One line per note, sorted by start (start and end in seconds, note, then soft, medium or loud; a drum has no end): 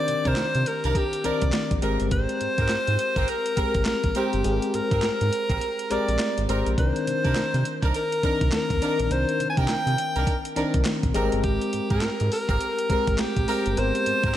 0.00 1.24 D#3 medium
0.00 1.24 C4 medium
0.00 1.25 D4 medium
0.00 1.83 G4 medium
0.00 0.82 A#4 medium
0.00 0.29 D5 loud
0.08 0.16 C3 soft
0.08 closed hi-hat medium
0.25 0.35 C3 loud
0.25 0.43 D4 medium
0.25 0.43 D#4 medium
0.25 0.43 A#4 medium
0.25 0.69 C5 loud
0.25 kick medium
0.25 closed hi-hat soft
0.36 0.45 C3 soft
0.36 snare loud
0.36 clap medium
0.36 closed hi-hat medium
0.55 0.64 C3 loud
0.55 closed hi-hat soft
0.66 0.98 A#4 loud
0.66 closed hi-hat medium
0.83 0.94 C2 medium
0.83 1.01 D4 medium
0.83 1.01 D#4 medium
0.83 1.01 A#4 medium
0.83 closed hi-hat soft
0.95 1.27 G4 loud
0.95 kick medium
0.95 closed hi-hat medium
1.13 closed hi-hat medium
1.24 1.32 C2 soft
1.24 1.76 D#3 medium
1.24 1.76 C4 medium
1.24 1.45 D4 medium
1.24 1.76 D4 medium
1.24 1.46 D#4 medium
1.24 1.46 A#4 medium
1.24 1.77 A#4 medium
1.24 1.86 D5 medium
1.24 closed hi-hat medium
1.42 1.52 C2 medium
1.42 kick medium
1.42 closed hi-hat medium
1.52 snare loud
1.52 clap medium
1.52 closed hi-hat medium
1.71 1.81 A#1 medium
1.71 kick medium
1.71 closed hi-hat medium
1.82 1.98 G#1 medium
1.82 2.85 G#3 medium
1.82 2.04 C4 medium
1.82 2.85 C4 medium
1.82 2.04 G4 medium
1.82 2.86 G4 medium
1.82 2.04 A#4 medium
1.82 2.86 A#4 medium
1.82 closed hi-hat medium
2.00 2.10 G1 medium
2.00 closed hi-hat soft
2.11 2.26 G#1 loud
2.11 3.31 C5 loud
2.11 kick loud
2.11 closed hi-hat medium
2.29 closed hi-hat medium
2.41 2.48 G#2 soft
2.41 closed hi-hat medium
2.58 2.68 G#2 medium
2.58 2.75 C4 medium
2.58 2.75 G4 medium
2.58 2.76 A#4 medium
2.58 kick medium
2.58 closed hi-hat soft
2.68 2.77 G#2 soft
2.68 snare loud
2.68 clap medium
2.68 closed hi-hat medium
2.87 2.97 G#2 loud
2.87 closed hi-hat soft
2.99 closed hi-hat medium
3.16 3.26 G#1 medium
3.16 3.34 C4 medium
3.16 3.34 G4 medium
3.16 3.34 A#4 medium
3.16 kick medium
3.16 closed hi-hat soft
3.28 3.87 A#4 loud
3.28 closed hi-hat medium
3.46 closed hi-hat medium
3.56 3.64 G#1 soft
3.56 4.09 G#3 medium
3.56 3.78 C4 medium
3.56 4.09 C4 medium
3.56 3.78 G4 medium
3.56 4.09 G4 medium
3.56 3.79 A#4 medium
3.56 4.09 A#4 medium
3.56 kick medium
3.56 closed hi-hat medium
3.74 3.84 G#1 medium
3.74 kick medium
3.74 closed hi-hat medium
3.85 3.94 A#1 soft
3.85 4.14 A#4 medium
3.85 snare loud
3.85 clap medium
3.85 closed hi-hat medium
4.04 4.14 A#1 medium
4.04 kick medium
4.04 closed hi-hat medium
4.15 4.41 G#3 medium
4.15 4.37 C4 medium
4.15 4.42 C4 medium
4.15 4.37 G4 medium
4.15 4.42 G4 medium
4.15 4.76 G4 medium
4.15 4.37 A#4 medium
4.15 4.42 C5 medium
4.15 closed hi-hat medium
4.33 4.43 G1 loud
4.33 closed hi-hat soft
4.44 4.60 G#1 loud
4.44 5.47 G#3 medium
4.44 5.47 C4 medium
4.44 5.47 G4 medium
4.44 4.53 G#4 medium
4.44 closed hi-hat medium
4.52 5.51 A#4 medium
4.62 closed hi-hat medium
4.74 4.81 G#2 soft
4.74 5.03 A#4 medium
4.74 closed hi-hat medium
4.91 5.01 G#2 loud
4.91 5.08 C4 medium
4.91 5.09 G4 medium
4.91 5.09 A#4 medium
4.91 kick medium
4.91 closed hi-hat soft
5.02 5.11 G#2 soft
5.02 5.93 A#4 loud
5.02 snare loud
5.02 clap loud
5.02 closed hi-hat medium
5.21 5.31 G#2 loud
5.21 closed hi-hat soft
5.33 closed hi-hat medium
5.49 5.59 A#1 loud
5.49 5.67 C4 medium
5.49 5.67 G4 medium
5.49 5.67 A#4 medium
5.49 kick medium
5.49 closed hi-hat soft
5.61 closed hi-hat medium
5.79 closed hi-hat medium
5.90 5.98 A#1 soft
5.90 6.42 G#3 medium
5.90 6.12 C4 medium
5.90 6.42 C4 medium
5.90 6.12 G4 medium
5.90 6.42 G4 medium
5.90 6.12 A#4 medium
5.90 6.43 A#4 medium
5.90 6.52 D5 loud
5.90 closed hi-hat medium
6.08 6.18 A#1 loud
6.08 closed hi-hat medium
6.19 snare loud
6.19 clap medium
6.19 closed hi-hat medium
6.38 6.47 G#1 medium
6.38 closed hi-hat soft
6.48 6.63 G#1 medium
6.48 6.74 G#3 medium
6.48 6.70 C4 medium
6.48 6.75 C4 medium
6.48 6.70 G4 medium
6.48 6.75 G4 medium
6.48 6.70 A#4 medium
6.48 6.75 C5 medium
6.48 closed hi-hat medium
6.66 6.76 A#1 medium
6.66 closed hi-hat soft
6.78 6.93 C2 loud
6.78 7.80 D#3 medium
6.78 7.81 C4 medium
6.78 7.81 D4 medium
6.78 7.81 A#4 medium
6.78 7.91 C5 medium
6.78 kick loud
6.78 closed hi-hat medium
6.96 closed hi-hat medium
7.07 7.14 C3 soft
7.07 closed hi-hat medium
7.24 7.34 C3 loud
7.24 7.42 D4 medium
7.24 7.42 D#4 medium
7.24 7.42 A#4 medium
7.24 kick medium
7.24 closed hi-hat soft
7.35 7.43 C3 soft
7.35 snare loud
7.35 clap medium
7.35 closed hi-hat medium
7.54 7.63 C3 loud
7.54 closed hi-hat soft
7.65 closed hi-hat medium
7.82 7.92 C2 medium
7.82 8.00 D4 medium
7.82 8.00 D#4 medium
7.82 8.00 A#4 medium
7.82 kick medium
7.82 closed hi-hat soft
7.94 8.49 A#4 loud
7.94 closed hi-hat medium
8.12 closed hi-hat medium
8.23 8.31 C2 soft
8.23 8.75 D#3 medium
8.23 8.75 C4 medium
8.23 8.45 D4 medium
8.23 8.75 D4 medium
8.23 8.45 D#4 medium
8.23 8.45 A#4 medium
8.23 8.76 A#4 medium
8.23 kick medium
8.23 closed hi-hat medium
8.41 8.51 C2 loud
8.41 kick medium
8.41 closed hi-hat medium
8.52 8.60 D#2 soft
8.52 9.14 A#4 medium
8.52 snare loud
8.52 clap medium
8.52 closed hi-hat medium
8.70 8.80 D#2 medium
8.70 kick medium
8.70 closed hi-hat medium
8.81 9.07 D#3 medium
8.81 9.08 C4 medium
8.81 9.03 D4 medium
8.81 9.08 D4 medium
8.81 9.03 D#4 medium
8.81 9.03 A#4 medium
8.81 9.08 A#4 medium
8.81 closed hi-hat medium
8.99 9.09 A#1 loud
8.99 closed hi-hat medium
9.11 9.25 C2 loud
9.11 10.13 D#3 medium
9.11 10.13 C4 medium
9.11 10.14 D4 medium
9.11 10.14 A#4 medium
9.11 9.49 C5 loud
9.11 closed hi-hat medium
9.29 closed hi-hat medium
9.40 9.47 C3 soft
9.40 closed hi-hat medium
9.50 9.59 G#5 medium
9.57 9.67 C3 loud
9.57 9.75 D4 medium
9.57 9.75 D#4 medium
9.57 9.75 A#4 medium
9.57 10.74 G5 loud
9.57 kick medium
9.57 closed hi-hat soft
9.68 9.76 C3 soft
9.68 snare loud
9.68 clap medium
9.68 closed hi-hat medium
9.87 9.96 C3 loud
9.87 closed hi-hat soft
9.98 closed hi-hat medium
10.15 10.25 C2 medium
10.15 10.33 D4 medium
10.15 10.33 D#4 medium
10.15 10.33 A#4 medium
10.15 closed hi-hat soft
10.27 kick medium
10.27 closed hi-hat medium
10.45 closed hi-hat medium
10.56 10.64 C2 soft
10.56 11.08 D#3 medium
10.56 11.08 C4 medium
10.56 10.78 D4 medium
10.56 11.08 D4 medium
10.56 10.78 D#4 medium
10.56 10.78 A#4 medium
10.56 11.09 A#4 loud
10.56 closed hi-hat medium
10.74 10.84 C2 medium
10.74 kick medium
10.74 closed hi-hat medium
10.85 snare loud
10.85 clap medium
10.85 closed hi-hat medium
11.03 11.13 A#1 medium
11.03 kick medium
11.03 closed hi-hat medium
11.14 11.30 G#1 loud
11.14 12.17 G#3 loud
11.14 11.36 C4 medium
11.14 12.17 C4 medium
11.14 11.36 G4 medium
11.14 12.18 G4 medium
11.14 11.36 A#4 medium
11.14 12.18 A#4 loud
11.14 closed hi-hat medium
11.32 11.42 G1 medium
11.32 closed hi-hat soft
11.44 11.59 G#1 loud
11.44 11.93 G4 medium
11.44 kick loud
11.44 closed hi-hat medium
11.62 closed hi-hat soft
11.73 11.81 G#2 soft
11.73 closed hi-hat medium
11.90 12.00 G#2 loud
11.90 12.08 C4 medium
11.90 12.08 G4 medium
11.90 12.08 A#4 medium
11.90 12.31 A#4 loud
11.90 kick medium
11.90 closed hi-hat soft
12.01 12.10 G#2 soft
12.01 snare loud
12.01 clap loud
12.01 closed hi-hat medium
12.20 12.30 G#2 loud
12.20 closed hi-hat soft
12.32 13.21 A#4 loud
12.32 open hi-hat medium
12.48 12.58 G#1 medium
12.48 12.66 C4 medium
12.48 12.66 G4 medium
12.48 12.66 A#4 medium
12.48 kick medium
12.48 closed hi-hat soft
12.61 closed hi-hat medium
12.79 closed hi-hat medium
12.89 12.97 G#1 soft
12.89 13.41 G#3 medium
12.89 13.11 C4 medium
12.89 13.41 C4 medium
12.89 13.11 G4 medium
12.89 13.42 G4 medium
12.89 13.11 A#4 medium
12.89 13.42 A#4 medium
12.89 kick medium
12.89 closed hi-hat medium
13.07 13.17 G#1 medium
13.07 kick medium
13.07 closed hi-hat medium
13.18 13.27 A#1 medium
13.18 13.80 G4 medium
13.18 snare loud
13.18 clap loud
13.18 closed hi-hat medium
13.37 13.46 A#1 medium
13.37 kick loud
13.37 closed hi-hat medium
13.47 13.73 G#3 medium
13.47 13.69 C4 medium
13.47 13.74 C4 medium
13.47 13.69 G4 medium
13.47 13.74 G4 medium
13.47 13.69 A#4 medium
13.47 13.74 A#4 medium
13.47 open hi-hat medium
13.66 13.75 G1 loud
13.66 closed hi-hat soft
13.77 13.92 G#1 loud
13.77 14.37 G#3 medium
13.77 13.85 B3 medium
13.77 14.37 G4 medium
13.77 14.37 A#4 medium
13.77 14.37 C5 loud
13.77 closed hi-hat medium
13.84 14.37 C4 medium
13.95 closed hi-hat medium
14.06 14.14 G#2 soft
14.06 closed hi-hat medium
14.23 14.33 G#2 loud
14.23 14.37 C4 medium
14.23 14.37 G4 medium
14.23 14.37 A#4 medium
14.23 kick medium
14.23 closed hi-hat soft